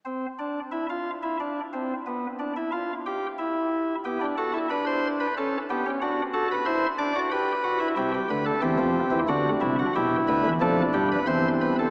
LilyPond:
<<
  \new Staff \with { instrumentName = "Pipe organ" } { \time 3/4 \key g \mixolydian \tempo 4 = 91 << { c'8 d'8 e'16 f'8 e'16 d'8 c'8 | b8 d'16 e'16 f'8 g'8 e'4 | g'8 a'8 b'16 c''8 b'16 a'8 g'8 | fis'8 a'16 b'16 c''8 d''8 b'4 |
e'16 g'16 b'16 a'16 g'4 fis'8 e'16 fis'16 | g'8 b'8 a'8 g'16 b'16 c''8 b'16 a'16 | } \\ { r2. | r2. | b16 d'16 fis'16 e'16 d'4 cis'8 b16 cis'16 | d'8 fis'8 e'8 d'16 fis'16 g'8 fis'16 e'16 |
g'4 c'4 d'4 | e'4 d'4 c'4 | } >> }
  \new Staff \with { instrumentName = "Pipe organ" } { \clef bass \time 3/4 \key g \mixolydian r2. | r2. | r2. | r2. |
<c, c>8 <d, d>8 <e, e>16 <f, f>8 <e, e>16 <d, d>8 <c, c>8 | <b,, b,>8 <d, d>16 <e, e>16 <f, f>8 <g, g>8 <e, e>4 | }
>>